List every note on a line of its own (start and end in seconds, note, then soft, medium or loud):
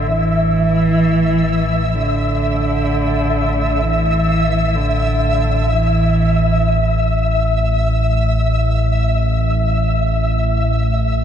0.00 11.24 A1 medium
0.00 11.24 A2 medium
0.00 11.24 E5 medium
0.07 1.95 E3 loud
1.94 3.83 D3 medium
3.82 4.77 E3 medium
4.75 5.70 D3 medium
5.69 7.08 E3 medium